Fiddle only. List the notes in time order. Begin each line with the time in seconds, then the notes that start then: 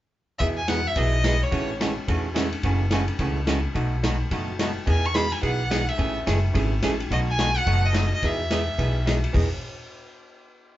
0.39 E5
0.57 G#5
0.68 F#5
0.87 E5
0.97 D#5
1.43 C#5
4.89 G#5
5.05 C#6
5.14 B5
5.32 G#5
5.42 F#5
5.89 E5
7.12 D#5
7.29 G#5
7.58 F#5
7.85 D#5
8.14 D#5
8.25 E5